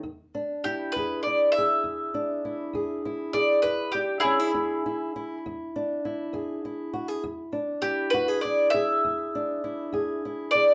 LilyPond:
<<
  \new Staff \with { instrumentName = "Mandolin" } { \time 12/8 \key e \mixolydian \tempo 4. = 67 r4 g'8 b'8 d''8 e''2. d''8 | b'8 g'8 <e' gis'>2 r2. | r4 g'8 b'8 d''8 e''2. d''8 | }
  \new Staff \with { instrumentName = "Steel-string acoustic guitar" } { \time 12/8 \key e \mixolydian << { r8 d'8 e'8 gis'8 e'8 gis'4 d'8 e'8 gis'8 e'8 gis'8 | r8 d'8 cis'16 e'16 e'8 e'8 e'4 d'8 e'8 gis'8 e'8 fis'16 gis'16 | r8 d'8 e'8 fis'16 gis'16 e'8 gis'4 d'8 e'8 gis'8 e'8 gis'8 | } \\ { e,4 r8 e,4 r8 e,4 r8 e,4 r8 | e,4 r8 e,4 r8 e,4 r8 e,4 r8 | e,4 r8 e,4 r8 e,4 r8 e,4 r8 | } >> }
>>